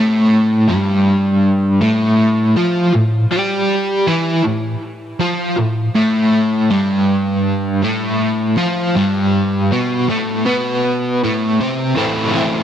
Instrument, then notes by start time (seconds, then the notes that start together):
overdriven electric guitar
Already playing: A2 A3
0.68 G2 G3
1.81 A2 A3
2.57 F3 F4
2.94 A2
3.31 G3 G4
4.07 E3 E4
4.44 A2
5.20 F3 F4
5.58 A2
5.95 A2 A3
6.70 G2 G3
7.82 A2 A3
8.57 F3 F4
8.96 G2 G3
9.71 B2 B3
10.08 A2 A3
10.46 B2 B3
11.23 A2 A3
11.60 C3 C4
11.96 A2 E3 A3 C4 E4
12.34 E3 A3 C4 E4